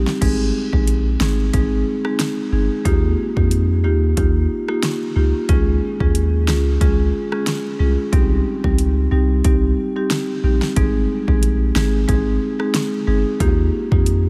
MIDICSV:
0, 0, Header, 1, 4, 480
1, 0, Start_track
1, 0, Key_signature, -4, "major"
1, 0, Tempo, 659341
1, 157, Time_signature, 4, 2, 24, 8
1, 10405, End_track
2, 0, Start_track
2, 0, Title_t, "Marimba"
2, 0, Program_c, 0, 12
2, 155, Note_on_c, 0, 56, 101
2, 155, Note_on_c, 0, 60, 88
2, 157, Note_on_c, 0, 63, 89
2, 158, Note_on_c, 0, 68, 107
2, 498, Note_off_c, 0, 56, 0
2, 498, Note_off_c, 0, 60, 0
2, 499, Note_off_c, 0, 63, 0
2, 500, Note_off_c, 0, 68, 0
2, 529, Note_on_c, 0, 56, 77
2, 531, Note_on_c, 0, 60, 67
2, 532, Note_on_c, 0, 63, 66
2, 534, Note_on_c, 0, 68, 83
2, 628, Note_off_c, 0, 56, 0
2, 629, Note_off_c, 0, 60, 0
2, 629, Note_off_c, 0, 63, 0
2, 630, Note_off_c, 0, 68, 0
2, 877, Note_on_c, 0, 56, 76
2, 878, Note_on_c, 0, 60, 71
2, 879, Note_on_c, 0, 63, 70
2, 882, Note_on_c, 0, 68, 83
2, 1001, Note_off_c, 0, 56, 0
2, 1002, Note_off_c, 0, 60, 0
2, 1002, Note_off_c, 0, 63, 0
2, 1004, Note_off_c, 0, 68, 0
2, 1115, Note_on_c, 0, 56, 90
2, 1116, Note_on_c, 0, 60, 85
2, 1118, Note_on_c, 0, 63, 82
2, 1119, Note_on_c, 0, 68, 99
2, 1240, Note_off_c, 0, 56, 0
2, 1241, Note_off_c, 0, 60, 0
2, 1242, Note_off_c, 0, 63, 0
2, 1242, Note_off_c, 0, 68, 0
2, 1489, Note_on_c, 0, 56, 79
2, 1491, Note_on_c, 0, 60, 71
2, 1492, Note_on_c, 0, 63, 69
2, 1494, Note_on_c, 0, 68, 82
2, 1588, Note_off_c, 0, 56, 0
2, 1589, Note_off_c, 0, 60, 0
2, 1589, Note_off_c, 0, 63, 0
2, 1590, Note_off_c, 0, 68, 0
2, 1836, Note_on_c, 0, 56, 75
2, 1836, Note_on_c, 0, 60, 68
2, 1839, Note_on_c, 0, 63, 71
2, 1840, Note_on_c, 0, 68, 87
2, 1961, Note_off_c, 0, 56, 0
2, 1961, Note_off_c, 0, 60, 0
2, 1962, Note_off_c, 0, 63, 0
2, 1963, Note_off_c, 0, 68, 0
2, 2074, Note_on_c, 0, 58, 99
2, 2076, Note_on_c, 0, 63, 88
2, 2077, Note_on_c, 0, 65, 91
2, 2078, Note_on_c, 0, 67, 108
2, 2418, Note_off_c, 0, 58, 0
2, 2419, Note_off_c, 0, 63, 0
2, 2419, Note_off_c, 0, 65, 0
2, 2420, Note_off_c, 0, 67, 0
2, 2449, Note_on_c, 0, 58, 76
2, 2450, Note_on_c, 0, 63, 69
2, 2452, Note_on_c, 0, 65, 66
2, 2453, Note_on_c, 0, 67, 83
2, 2548, Note_off_c, 0, 58, 0
2, 2549, Note_off_c, 0, 63, 0
2, 2549, Note_off_c, 0, 65, 0
2, 2550, Note_off_c, 0, 67, 0
2, 2795, Note_on_c, 0, 58, 78
2, 2796, Note_on_c, 0, 63, 71
2, 2798, Note_on_c, 0, 65, 70
2, 2798, Note_on_c, 0, 67, 87
2, 2920, Note_off_c, 0, 58, 0
2, 2921, Note_off_c, 0, 63, 0
2, 2922, Note_off_c, 0, 65, 0
2, 2922, Note_off_c, 0, 67, 0
2, 3034, Note_on_c, 0, 58, 91
2, 3035, Note_on_c, 0, 63, 83
2, 3036, Note_on_c, 0, 65, 83
2, 3038, Note_on_c, 0, 67, 104
2, 3160, Note_off_c, 0, 58, 0
2, 3160, Note_off_c, 0, 63, 0
2, 3161, Note_off_c, 0, 65, 0
2, 3162, Note_off_c, 0, 67, 0
2, 3409, Note_on_c, 0, 58, 80
2, 3410, Note_on_c, 0, 63, 72
2, 3412, Note_on_c, 0, 65, 72
2, 3413, Note_on_c, 0, 67, 84
2, 3508, Note_off_c, 0, 58, 0
2, 3509, Note_off_c, 0, 63, 0
2, 3509, Note_off_c, 0, 65, 0
2, 3510, Note_off_c, 0, 67, 0
2, 3754, Note_on_c, 0, 58, 76
2, 3757, Note_on_c, 0, 63, 72
2, 3757, Note_on_c, 0, 65, 71
2, 3760, Note_on_c, 0, 67, 88
2, 3880, Note_off_c, 0, 58, 0
2, 3881, Note_off_c, 0, 63, 0
2, 3882, Note_off_c, 0, 65, 0
2, 3883, Note_off_c, 0, 67, 0
2, 3995, Note_on_c, 0, 56, 100
2, 3996, Note_on_c, 0, 61, 92
2, 3997, Note_on_c, 0, 65, 91
2, 3999, Note_on_c, 0, 68, 107
2, 4338, Note_off_c, 0, 56, 0
2, 4339, Note_off_c, 0, 61, 0
2, 4339, Note_off_c, 0, 65, 0
2, 4340, Note_off_c, 0, 68, 0
2, 4369, Note_on_c, 0, 56, 74
2, 4372, Note_on_c, 0, 61, 69
2, 4373, Note_on_c, 0, 65, 68
2, 4375, Note_on_c, 0, 68, 85
2, 4468, Note_off_c, 0, 56, 0
2, 4469, Note_off_c, 0, 61, 0
2, 4470, Note_off_c, 0, 65, 0
2, 4471, Note_off_c, 0, 68, 0
2, 4715, Note_on_c, 0, 56, 76
2, 4716, Note_on_c, 0, 61, 72
2, 4718, Note_on_c, 0, 65, 74
2, 4719, Note_on_c, 0, 68, 83
2, 4840, Note_off_c, 0, 56, 0
2, 4841, Note_off_c, 0, 61, 0
2, 4842, Note_off_c, 0, 65, 0
2, 4842, Note_off_c, 0, 68, 0
2, 4955, Note_on_c, 0, 56, 91
2, 4957, Note_on_c, 0, 61, 83
2, 4958, Note_on_c, 0, 65, 86
2, 4959, Note_on_c, 0, 68, 104
2, 5080, Note_off_c, 0, 56, 0
2, 5081, Note_off_c, 0, 61, 0
2, 5082, Note_off_c, 0, 65, 0
2, 5082, Note_off_c, 0, 68, 0
2, 5329, Note_on_c, 0, 56, 77
2, 5330, Note_on_c, 0, 61, 73
2, 5333, Note_on_c, 0, 65, 71
2, 5334, Note_on_c, 0, 68, 87
2, 5428, Note_off_c, 0, 56, 0
2, 5429, Note_off_c, 0, 61, 0
2, 5430, Note_off_c, 0, 65, 0
2, 5430, Note_off_c, 0, 68, 0
2, 5674, Note_on_c, 0, 56, 77
2, 5676, Note_on_c, 0, 61, 73
2, 5677, Note_on_c, 0, 65, 71
2, 5679, Note_on_c, 0, 68, 82
2, 5800, Note_off_c, 0, 56, 0
2, 5801, Note_off_c, 0, 61, 0
2, 5801, Note_off_c, 0, 65, 0
2, 5802, Note_off_c, 0, 68, 0
2, 5914, Note_on_c, 0, 55, 97
2, 5915, Note_on_c, 0, 60, 88
2, 5917, Note_on_c, 0, 63, 88
2, 5919, Note_on_c, 0, 67, 108
2, 6258, Note_off_c, 0, 55, 0
2, 6258, Note_off_c, 0, 60, 0
2, 6259, Note_off_c, 0, 63, 0
2, 6260, Note_off_c, 0, 67, 0
2, 6289, Note_on_c, 0, 55, 75
2, 6290, Note_on_c, 0, 60, 72
2, 6292, Note_on_c, 0, 63, 67
2, 6294, Note_on_c, 0, 67, 81
2, 6388, Note_off_c, 0, 55, 0
2, 6389, Note_off_c, 0, 60, 0
2, 6390, Note_off_c, 0, 63, 0
2, 6390, Note_off_c, 0, 67, 0
2, 6633, Note_on_c, 0, 55, 78
2, 6635, Note_on_c, 0, 60, 74
2, 6637, Note_on_c, 0, 63, 70
2, 6638, Note_on_c, 0, 67, 89
2, 6759, Note_off_c, 0, 55, 0
2, 6760, Note_off_c, 0, 60, 0
2, 6761, Note_off_c, 0, 63, 0
2, 6762, Note_off_c, 0, 67, 0
2, 6874, Note_on_c, 0, 55, 91
2, 6875, Note_on_c, 0, 60, 85
2, 6876, Note_on_c, 0, 63, 87
2, 6878, Note_on_c, 0, 67, 98
2, 7000, Note_off_c, 0, 55, 0
2, 7000, Note_off_c, 0, 60, 0
2, 7001, Note_off_c, 0, 63, 0
2, 7002, Note_off_c, 0, 67, 0
2, 7250, Note_on_c, 0, 55, 80
2, 7252, Note_on_c, 0, 60, 76
2, 7252, Note_on_c, 0, 63, 74
2, 7254, Note_on_c, 0, 67, 90
2, 7348, Note_off_c, 0, 55, 0
2, 7349, Note_off_c, 0, 60, 0
2, 7350, Note_off_c, 0, 63, 0
2, 7350, Note_off_c, 0, 67, 0
2, 7597, Note_on_c, 0, 55, 77
2, 7599, Note_on_c, 0, 60, 72
2, 7600, Note_on_c, 0, 63, 73
2, 7601, Note_on_c, 0, 67, 85
2, 7721, Note_off_c, 0, 55, 0
2, 7722, Note_off_c, 0, 60, 0
2, 7723, Note_off_c, 0, 63, 0
2, 7723, Note_off_c, 0, 67, 0
2, 7835, Note_on_c, 0, 56, 96
2, 7838, Note_on_c, 0, 60, 92
2, 7839, Note_on_c, 0, 63, 94
2, 7840, Note_on_c, 0, 68, 111
2, 8178, Note_off_c, 0, 56, 0
2, 8180, Note_off_c, 0, 60, 0
2, 8180, Note_off_c, 0, 63, 0
2, 8181, Note_off_c, 0, 68, 0
2, 8209, Note_on_c, 0, 56, 77
2, 8211, Note_on_c, 0, 60, 71
2, 8212, Note_on_c, 0, 63, 70
2, 8214, Note_on_c, 0, 68, 86
2, 8308, Note_off_c, 0, 56, 0
2, 8309, Note_off_c, 0, 60, 0
2, 8309, Note_off_c, 0, 63, 0
2, 8310, Note_off_c, 0, 68, 0
2, 8554, Note_on_c, 0, 56, 80
2, 8556, Note_on_c, 0, 60, 73
2, 8557, Note_on_c, 0, 63, 74
2, 8559, Note_on_c, 0, 68, 88
2, 8680, Note_off_c, 0, 56, 0
2, 8681, Note_off_c, 0, 60, 0
2, 8681, Note_off_c, 0, 63, 0
2, 8682, Note_off_c, 0, 68, 0
2, 8794, Note_on_c, 0, 56, 96
2, 8795, Note_on_c, 0, 60, 88
2, 8797, Note_on_c, 0, 63, 90
2, 8798, Note_on_c, 0, 68, 107
2, 8920, Note_off_c, 0, 56, 0
2, 8920, Note_off_c, 0, 60, 0
2, 8921, Note_off_c, 0, 63, 0
2, 8922, Note_off_c, 0, 68, 0
2, 9168, Note_on_c, 0, 56, 81
2, 9170, Note_on_c, 0, 60, 72
2, 9171, Note_on_c, 0, 63, 73
2, 9173, Note_on_c, 0, 68, 91
2, 9268, Note_off_c, 0, 56, 0
2, 9268, Note_off_c, 0, 60, 0
2, 9269, Note_off_c, 0, 63, 0
2, 9270, Note_off_c, 0, 68, 0
2, 9516, Note_on_c, 0, 56, 80
2, 9517, Note_on_c, 0, 60, 72
2, 9519, Note_on_c, 0, 63, 74
2, 9520, Note_on_c, 0, 68, 90
2, 9641, Note_off_c, 0, 56, 0
2, 9641, Note_off_c, 0, 60, 0
2, 9642, Note_off_c, 0, 63, 0
2, 9643, Note_off_c, 0, 68, 0
2, 9756, Note_on_c, 0, 58, 102
2, 9757, Note_on_c, 0, 63, 96
2, 9758, Note_on_c, 0, 65, 90
2, 9759, Note_on_c, 0, 67, 116
2, 10099, Note_off_c, 0, 58, 0
2, 10099, Note_off_c, 0, 63, 0
2, 10100, Note_off_c, 0, 65, 0
2, 10101, Note_off_c, 0, 67, 0
2, 10131, Note_on_c, 0, 58, 78
2, 10133, Note_on_c, 0, 63, 70
2, 10134, Note_on_c, 0, 65, 73
2, 10136, Note_on_c, 0, 67, 82
2, 10229, Note_off_c, 0, 58, 0
2, 10230, Note_off_c, 0, 63, 0
2, 10230, Note_off_c, 0, 65, 0
2, 10231, Note_off_c, 0, 67, 0
2, 10405, End_track
3, 0, Start_track
3, 0, Title_t, "Sub bass"
3, 0, Program_c, 1, 38
3, 158, Note_on_c, 1, 32, 109
3, 377, Note_off_c, 1, 32, 0
3, 532, Note_on_c, 1, 34, 93
3, 848, Note_off_c, 1, 34, 0
3, 877, Note_on_c, 1, 32, 92
3, 1096, Note_off_c, 1, 32, 0
3, 1119, Note_on_c, 1, 32, 109
3, 1338, Note_off_c, 1, 32, 0
3, 1837, Note_on_c, 1, 31, 93
3, 1960, Note_off_c, 1, 31, 0
3, 2078, Note_on_c, 1, 39, 95
3, 2297, Note_off_c, 1, 39, 0
3, 2452, Note_on_c, 1, 41, 97
3, 2797, Note_on_c, 1, 39, 90
3, 2808, Note_off_c, 1, 41, 0
3, 3017, Note_off_c, 1, 39, 0
3, 3038, Note_on_c, 1, 39, 113
3, 3257, Note_off_c, 1, 39, 0
3, 3757, Note_on_c, 1, 37, 96
3, 3880, Note_off_c, 1, 37, 0
3, 3997, Note_on_c, 1, 37, 110
3, 4216, Note_off_c, 1, 37, 0
3, 4371, Note_on_c, 1, 39, 91
3, 4716, Note_on_c, 1, 37, 83
3, 4727, Note_off_c, 1, 39, 0
3, 4936, Note_off_c, 1, 37, 0
3, 4958, Note_on_c, 1, 37, 112
3, 5177, Note_off_c, 1, 37, 0
3, 5676, Note_on_c, 1, 36, 90
3, 5800, Note_off_c, 1, 36, 0
3, 5917, Note_on_c, 1, 36, 109
3, 6136, Note_off_c, 1, 36, 0
3, 6291, Note_on_c, 1, 37, 97
3, 6608, Note_off_c, 1, 37, 0
3, 6637, Note_on_c, 1, 36, 96
3, 6856, Note_off_c, 1, 36, 0
3, 6878, Note_on_c, 1, 36, 113
3, 7097, Note_off_c, 1, 36, 0
3, 7597, Note_on_c, 1, 34, 92
3, 7720, Note_off_c, 1, 34, 0
3, 7837, Note_on_c, 1, 32, 113
3, 8057, Note_off_c, 1, 32, 0
3, 8212, Note_on_c, 1, 34, 92
3, 8528, Note_off_c, 1, 34, 0
3, 8558, Note_on_c, 1, 32, 96
3, 8777, Note_off_c, 1, 32, 0
3, 8799, Note_on_c, 1, 32, 112
3, 9018, Note_off_c, 1, 32, 0
3, 9518, Note_on_c, 1, 31, 96
3, 9641, Note_off_c, 1, 31, 0
3, 9757, Note_on_c, 1, 39, 99
3, 9977, Note_off_c, 1, 39, 0
3, 10132, Note_on_c, 1, 41, 97
3, 10405, Note_off_c, 1, 41, 0
3, 10405, End_track
4, 0, Start_track
4, 0, Title_t, "Drums"
4, 52, Note_on_c, 9, 38, 69
4, 124, Note_off_c, 9, 38, 0
4, 158, Note_on_c, 9, 36, 117
4, 158, Note_on_c, 9, 42, 71
4, 158, Note_on_c, 9, 49, 93
4, 230, Note_off_c, 9, 36, 0
4, 230, Note_off_c, 9, 42, 0
4, 230, Note_off_c, 9, 49, 0
4, 532, Note_on_c, 9, 36, 83
4, 605, Note_off_c, 9, 36, 0
4, 637, Note_on_c, 9, 42, 79
4, 710, Note_off_c, 9, 42, 0
4, 878, Note_on_c, 9, 38, 115
4, 951, Note_off_c, 9, 38, 0
4, 1118, Note_on_c, 9, 42, 73
4, 1119, Note_on_c, 9, 36, 92
4, 1191, Note_off_c, 9, 42, 0
4, 1192, Note_off_c, 9, 36, 0
4, 1491, Note_on_c, 9, 37, 98
4, 1564, Note_off_c, 9, 37, 0
4, 1598, Note_on_c, 9, 38, 115
4, 1598, Note_on_c, 9, 42, 87
4, 1671, Note_off_c, 9, 38, 0
4, 1671, Note_off_c, 9, 42, 0
4, 2077, Note_on_c, 9, 36, 119
4, 2078, Note_on_c, 9, 42, 75
4, 2150, Note_off_c, 9, 36, 0
4, 2151, Note_off_c, 9, 42, 0
4, 2452, Note_on_c, 9, 36, 81
4, 2525, Note_off_c, 9, 36, 0
4, 2557, Note_on_c, 9, 42, 82
4, 2629, Note_off_c, 9, 42, 0
4, 3037, Note_on_c, 9, 42, 75
4, 3038, Note_on_c, 9, 36, 93
4, 3110, Note_off_c, 9, 42, 0
4, 3111, Note_off_c, 9, 36, 0
4, 3411, Note_on_c, 9, 37, 97
4, 3484, Note_off_c, 9, 37, 0
4, 3518, Note_on_c, 9, 38, 119
4, 3518, Note_on_c, 9, 42, 87
4, 3590, Note_off_c, 9, 38, 0
4, 3590, Note_off_c, 9, 42, 0
4, 3996, Note_on_c, 9, 42, 74
4, 3997, Note_on_c, 9, 36, 120
4, 4069, Note_off_c, 9, 42, 0
4, 4070, Note_off_c, 9, 36, 0
4, 4371, Note_on_c, 9, 36, 80
4, 4444, Note_off_c, 9, 36, 0
4, 4476, Note_on_c, 9, 42, 84
4, 4549, Note_off_c, 9, 42, 0
4, 4718, Note_on_c, 9, 38, 113
4, 4791, Note_off_c, 9, 38, 0
4, 4958, Note_on_c, 9, 36, 95
4, 4958, Note_on_c, 9, 42, 76
4, 5031, Note_off_c, 9, 36, 0
4, 5031, Note_off_c, 9, 42, 0
4, 5331, Note_on_c, 9, 37, 96
4, 5403, Note_off_c, 9, 37, 0
4, 5438, Note_on_c, 9, 38, 122
4, 5438, Note_on_c, 9, 42, 91
4, 5510, Note_off_c, 9, 42, 0
4, 5511, Note_off_c, 9, 38, 0
4, 5917, Note_on_c, 9, 36, 122
4, 5917, Note_on_c, 9, 42, 74
4, 5989, Note_off_c, 9, 36, 0
4, 5990, Note_off_c, 9, 42, 0
4, 6291, Note_on_c, 9, 36, 84
4, 6364, Note_off_c, 9, 36, 0
4, 6395, Note_on_c, 9, 42, 79
4, 6468, Note_off_c, 9, 42, 0
4, 6876, Note_on_c, 9, 42, 76
4, 6878, Note_on_c, 9, 36, 93
4, 6949, Note_off_c, 9, 42, 0
4, 6951, Note_off_c, 9, 36, 0
4, 7357, Note_on_c, 9, 38, 120
4, 7357, Note_on_c, 9, 42, 88
4, 7429, Note_off_c, 9, 38, 0
4, 7429, Note_off_c, 9, 42, 0
4, 7731, Note_on_c, 9, 38, 73
4, 7804, Note_off_c, 9, 38, 0
4, 7836, Note_on_c, 9, 42, 77
4, 7837, Note_on_c, 9, 36, 124
4, 7909, Note_off_c, 9, 42, 0
4, 7910, Note_off_c, 9, 36, 0
4, 8212, Note_on_c, 9, 36, 82
4, 8285, Note_off_c, 9, 36, 0
4, 8318, Note_on_c, 9, 42, 88
4, 8391, Note_off_c, 9, 42, 0
4, 8559, Note_on_c, 9, 38, 111
4, 8632, Note_off_c, 9, 38, 0
4, 8799, Note_on_c, 9, 36, 94
4, 8799, Note_on_c, 9, 42, 74
4, 8872, Note_off_c, 9, 36, 0
4, 8872, Note_off_c, 9, 42, 0
4, 9171, Note_on_c, 9, 37, 96
4, 9244, Note_off_c, 9, 37, 0
4, 9278, Note_on_c, 9, 38, 127
4, 9278, Note_on_c, 9, 42, 88
4, 9351, Note_off_c, 9, 38, 0
4, 9351, Note_off_c, 9, 42, 0
4, 9758, Note_on_c, 9, 36, 122
4, 9758, Note_on_c, 9, 42, 76
4, 9830, Note_off_c, 9, 36, 0
4, 9830, Note_off_c, 9, 42, 0
4, 10132, Note_on_c, 9, 36, 84
4, 10205, Note_off_c, 9, 36, 0
4, 10238, Note_on_c, 9, 42, 82
4, 10311, Note_off_c, 9, 42, 0
4, 10405, End_track
0, 0, End_of_file